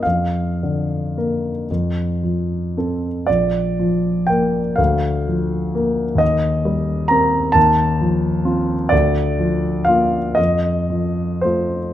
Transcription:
X:1
M:6/8
L:1/8
Q:3/8=40
K:Bb
V:1 name="Grand piano"
f4- f z | d2 g f3 | e2 b a3 | d2 f e2 c |]
V:2 name="Grand piano" clef=bass
F,, D, [B,B] F,, F, [CA] | B,,, F, [B,B] D,, F, [B,B] | E,, G, [CB] E,, F, [CF] | D,, F, [B,F] F,, F, [A,F] |]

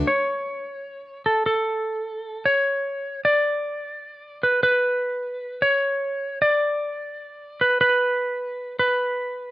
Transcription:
X:1
M:4/4
L:1/16
Q:1/4=76
K:Bm
V:1 name="Electric slide guitar"
c6 A A4- A c4 | d6 B B4- B c4 | d6 B B4- B B4 |]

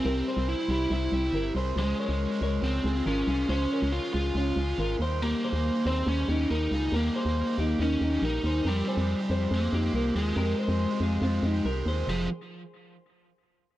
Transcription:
X:1
M:4/4
L:1/16
Q:1/4=140
K:Fm
V:1 name="Clean electric guitar"
[GB]2 [Ac]4 [=EG]2 [CE]2 [EG]2 [GB]2 [Ac]2 | [Ac]2 [Bd]4 [Bd]4 [FA]2 [FB]2 [FA]2 | [Ac]2 [Bd]4 [FA]2 [DF]2 [FA]2 [FB]2 [Gc]2 | [GB]2 [Ac]4 [Ac]4 [EG]2 [GB]2 [FA]2 |
[GB]2 [Ac]4 [EG]2 [B,E]2 [EG]2 [GB]2 [Ac]2 | [GB]2 [ca]4 [Ac]4 [EG]2 [GB]2 [FA]2 | [GB]2 [Ac]4 [FA]2 [CF]2 [EG]2 [GB]2 [Ac]2 | A2 z12 z2 |]
V:2 name="Lead electric guitar"
C4 =E2 E8 z2 | A,8 C4 D4 | D4 F2 F8 z2 | B,6 C2 D4 E4 |
B,8 D4 E4 | G,8 B,6 A,2- | A,12 z4 | F,2 z12 z2 |]
V:3 name="Overdriven electric guitar" clef=bass
[C,G,C=E]3 [G,CE]2 [C,G,CE]3 [C,G,CE]3 [G,CE]3 [C,G,CE]2 | [D,F,A,D]3 [F,A,D]2 [D,F,A,D]3 [D,F,A,]3 [F,A,D]3 [D,F,A,D]2 | [D,F,A,D]3 [F,A,D]2 [D,F,A,D]3 [D,F,A,D]3 [F,A,D]3 [E,G,B,E]2 | [E,G,B,E]3 [G,B,E]2 [E,G,B,E]3 [E,G,B,E]3 [G,B,E]3 [E,G,B,E]2 |
[E,G,B,E]3 [G,B,E]2 [E,G,B,E]3 [E,G,B,E]3 [G,B,E]3 [E,G,B,E]2 | [F,CG]3 [F,A,CG]2 [F,,C,F,CG]3 [F,A,CG]3 [F,A,CG]3 [F,A,CG]2 | [F,A,CG]3 [F,A,CG]2 [F,,C,F,A,CG]3 [F,A,CG]3 [F,A,CG]3 [F,A,CG]2 | [F,,C,F,A,CG]2 z12 z2 |]
V:4 name="FM bass" clef=bass
C,,2 z C,,2 z C,,2 C,,2 C,,2 G,,,2 C,,2 | D,,2 z D,,2 z D,,2 D,,2 D,,2 A,,,2 C,,2 | D,,2 z D,,2 z D,,2 D,,2 D,,2 A,,,2 E,,2- | E,,2 z E,,2 z E,,2 E,,2 E,,2 E,,2 D,,2 |
E,,2 z E,,2 z E,,2 E,,2 E,,2 B,,,2 E,,2 | F,,2 z F,,2 z F,,2 F,,2 F,,2 C,,2 E,,2 | F,,2 z F,,2 z F,,2 F,,2 F,,2 C,,2 E,,2 | F,,,2 z12 z2 |]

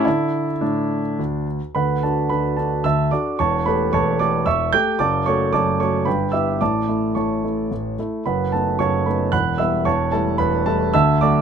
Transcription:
X:1
M:3/4
L:1/8
Q:1/4=111
K:D
V:1 name="Grand piano"
E2 D3 z | [Bfb] [Aa] [Bb] [Aa] [eae'] [dd'] | [cac'] [Bb] [cac'] [dd'] [ec'e'] [gg'] | [dad'] [cc'] [dad'] [cc'] [Bgb] [ee'] |
[dad']2 [cac']3 z | [Bfb] [Aa] [cac'] [Bb] [fbf'] [ee'] | [cac'] [Aa] [Bb] [Aa] [eae'] [dd'] |]
V:2 name="Grand piano"
[D,da]2 A,,2 D,,2 | [D,,D,] [DF] [D,,D,] [DF] [D,,D,] [DFA] | [E,,,E,,] [A,GA] [E,,,E,,] [A,GA] [E,,,E,,] [A,GA] | [F,,,F,,] [A,FA] [F,,,F,,] [A,FA] [G,,,G,,] [B,EG] |
[A,,,A,,] [A,E] [A,,,A,,] [A,E] [A,,,A,,] [A,E] | [F,,,F,,] [A,B,^D] [F,,,F,,] [A,B,D] [E,,,E,,] [G,B,E] | [E,,,E,,] [G,A,E] [E,,,E,,] [G,A,E] [D,,D,] [F,A,F] |]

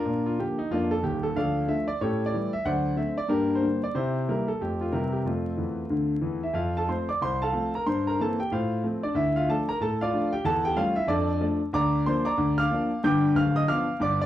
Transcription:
X:1
M:4/4
L:1/16
Q:"Swing" 1/4=185
K:Bb
V:1 name="Grand piano"
[FB]2 F2 G2 E2 [B,DF]2 A2 G2 A2 | [K:F] [Adf]4 e2 d2 [GA^c]3 d3 e2 | [cd^f]4 e2 d2 [DGB]3 c3 d2 | [EGc]4 [EGB]2 A2 G2 F2 [EGB]2 G2 |
[A,CF]12- [A,CF]2 [Ee]2 | [Ff]2 [Aa]2 [cc']2 [dd']2 [cc']2 [Afa]4 [Bb]2 | [cc']2 [Bb]2 [Aa]2 [Gg]2 [Fcf]4 z2 [Dd]2 | [Ee]2 [Ff]2 [Aa]2 [Bb]2 [Aa]2 [Fdf]4 [Gg]2 |
[Aa]2 [Gg]2 [Ff]2 [Ee]2 [DAd]4 z4 | [K:Bb] [dbd']4 [cc']2 [dbd']4 [fd'f']6 | [gd'g']4 [ff']2 [ee']2 [fd'f']4 [dd']2 d2 |]
V:2 name="Grand piano" clef=bass
[B,,D]4 [D,F,B,]4 F,,4 [E,,,E,,]4 | [K:F] [D,,F,]4 [D,F,A,]4 [A,,^C]4 [E,G,A,]4 | [D,,^F,]4 [D,A,C]4 [G,,B,]4 [D,G,B,]4 | C,4 [E,G,B,]4 [F,,F,A,C]4 [C,E,G,C]4 |
F,,4 [E,,E,]4 [D,,D,]4 [E,,E,]4 | F,,4 [F,A,C]4 C,,4 [F,A,C]4 | G,,4 [E,B,C]4 A,,4 [F,A,C]4 | D,,4 [F,A,D]4 A,,4 [F,A,D]4 |
E,,4 [G,A,^C]4 F,,4 [F,A,D]4 | [K:Bb] D,,4 [F,B,D]4 D,,4 [F,B,D]4 | [G,,,G,,]4 [D,,,D,,]4 [F,=B,D]4 [G,,,G,,]4 |]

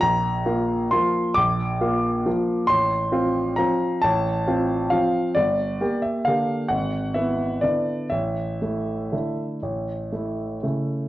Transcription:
X:1
M:3/4
L:1/8
Q:1/4=132
K:Aphr
V:1 name="Grand piano"
b4 c'2 | d'6 | c'4 b2 | a4 f2 |
d3 e f2 | ^f2 e2 d2 | e6- | e4- e z |]
V:2 name="Grand piano"
B,,,2 [B,F]2 [F,B,F]2 | B,,,2 [B,F]2 [F,B,F]2 | A,,,2 [CF]2 [F,CF]2 | A,,,2 [CF]2 [F,CF]2 |
G,,,2 [B,G]2 [D,B,G]2 | ^G,,,2 [=B,E]2 [D,B,E]2 | A,,,2 [A,E]2 [D,A,E]2 | A,,,2 [A,E]2 [^C,A,E]2 |]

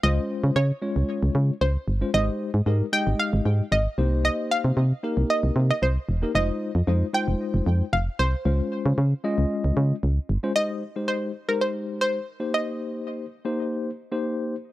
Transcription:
X:1
M:4/4
L:1/16
Q:1/4=114
K:Ab
V:1 name="Synth pluck"
e4 d8 c4 | e6 g2 f4 e4 | e2 f6 e3 e c4 | e6 g6 f2 c2- |
c6 z8 z2 | e4 c3 B c3 c4 e- | e8- e3 z4 z |]
V:2 name="Tine electric piano"
[A,DFc]4 z2 [A,DFd]4- [A,DFd] z4 [A,DFc] | [A,EGc]3 z [A,EGB] z [A,EGe]4- [A,EGe] z3 [B,EGc]2- | [B,EGc]4 z2 [B,EGB]4- [B,EGB] z4 [B,EGB] | [A,EFc]3 z [A,EFc] z [A,EFc]4- [A,EFc] z4 z |
[A,DFc]4 z2 [A,DFe]4- [A,DFe] z4 [A,DFc] | [A,EGc]2 z [A,EGc]3 z [A,EGc]4- [A,EGc] z2 [B,EGc]2- | [B,EGc]4 z2 [B,EGc]3 z2 [B,EGc]3 z2 |]
V:3 name="FM bass" clef=bass
D,,2 z D, D,2 z D,, z D,, D,2 D,,2 G,,,2 | A,,,2 z A,, A,,2 z A,,, z A,,, A,,2 A,,,2 C,,2- | C,,2 z C, C,2 z C,, z C,, C,2 C,,2 _F,,,2 | F,,,2 z F,, F,,2 z F,,, z F,,, F,,2 F,,,2 C,,2 |
D,,2 z D, D,2 z D,, z D,, D,2 D,,2 G,,, z | z16 | z16 |]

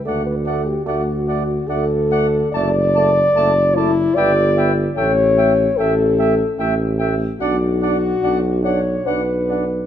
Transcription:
X:1
M:3/4
L:1/16
Q:1/4=74
K:D
V:1 name="Cornet"
f2 f2 f2 f2 f2 f2 | a2 a2 a2 a2 g2 g2 | g2 g2 g2 g2 g2 g2 | f2 f2 f2 f2 f2 f2 |]
V:2 name="Trumpet"
d2 d2 d2 d2 d2 d2 | d2 d2 d2 d2 e2 e2 | e2 e2 e2 e2 e2 e2 | d2 d2 d2 d2 d2 d2 |]
V:3 name="French horn"
A B A G F4 A4 | d6 E2 d3 z | c4 A4 z4 | F6 c2 B4 |]
V:4 name="Trombone"
A,2 A,2 A,2 A,2 A,2 A,2 | A,2 A,2 A,2 A,2 B,2 B,2 | A,2 A,2 A,2 A,2 A,2 A,2 | D2 D2 D2 D2 D2 D2 |]
V:5 name="Bass trombone" clef=bass
D,,4 D,,4 D,,4 | F,,,4 F,,,4 G,,,4 | A,,,4 A,,,4 A,,,4 | B,,,4 B,,,4 B,,,4 |]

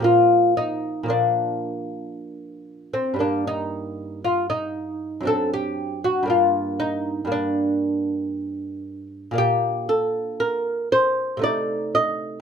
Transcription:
X:1
M:3/4
L:1/16
Q:1/4=58
K:Gm
V:1 name="Lute"
F2 E2 D6- D C | D E3 F E3 A G2 ^F | F2 E2 D6- D z | [K:Bb] G2 A2 B2 c2 d2 e2 |]
V:2 name="Lute"
[B,,F,B,]4 [B,,F,B,]8 | [G,,G,B,]8 [^F,,CD]4 | [G,,B,D]4 [G,,B,]8 | [K:Bb] [B,,B,D]8 [C,A,E]4 |]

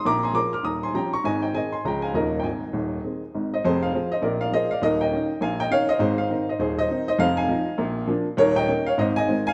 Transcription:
X:1
M:4/4
L:1/16
Q:"Swing" 1/4=202
K:Ab
V:1 name="Upright piano"
[b=d']2 [ac']2 [bd']2 [d'f']2 [be']2 [ac']2 [gb]2 [b_d']2 | [ea]2 [eg]2 [ea]2 [ac']2 [gb]2 [fa]2 [Be]3 g | [ea]12- [ea]2 [ce]2 | [Ac]2 [cf]4 [ce]2 [B=d]2 [df]2 [ce]2 [df]2 |
[Be]2 [eg]6 [fa]2 [eg]2 [df]2 [ce]2 | [Ac]2 [cf]4 [ce]2 [Ac]2 [ce]4 [ce]2 | [cf]2 [fa]8- [fa]2 z4 | [Bd]2 [eg]4 [df]2 [ce]2 [ea]4 [fa]2 |]
V:2 name="Upright piano" clef=bass
[B,,,B,,]4 [F,B,A]4 [E,,,E,,]4 [F,DG]4 | [A,,,A,,]4 [E,CA]4 [D,,D,F,DA]4 [E,,,E,,F,DG]4 | [A,,,A,,]4 [E,,,E,,]4 [E,CA]4 [A,,,A,,]4 | [F,,,F,,]4 [F,CA]4 [B,,,B,,]4 [F,B,A]4 |
[E,,,E,,]4 [E,DE]4 [B,,,B,,]4 [E,DE]4 | [A,,,A,,]4 [E,CE]4 [E,,,E,,]4 [E,CE]4 | [F,,,F,,]4 [F,CE]4 [B,,,B,,]4 [F,B,=D]4 | [E,,,E,,]4 [E,B,D]4 [A,,,A,,]4 [E,A,C]4 |]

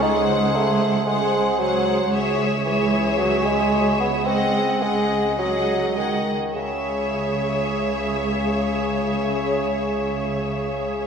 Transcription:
X:1
M:4/4
L:1/8
Q:1/4=107
K:C#m
V:1 name="Violin section"
f4 f2 f2 | e2 e6 | f2 f2 f2 f z | e8- |
e8 |]
V:2 name="Violin section"
^B4 B2 B2 | c2 c6 | d2 d2 d2 d z | c8- |
c8 |]
V:3 name="Viola section"
G4 G2 G2 | G2 G6 | G2 G2 G2 G z | G8- |
G8 |]
V:4 name="Bassoon" clef=bass
D2 A,2 G,2 F,2 | z2 E,2 F, G,2 B, | ^B,2 G,2 F,2 D,2 | C,8- |
C,8 |]
V:5 name="Cello section" clef=bass
C,,8 | C,,8- | C,,6- C,, z | C,,8- |
C,,8 |]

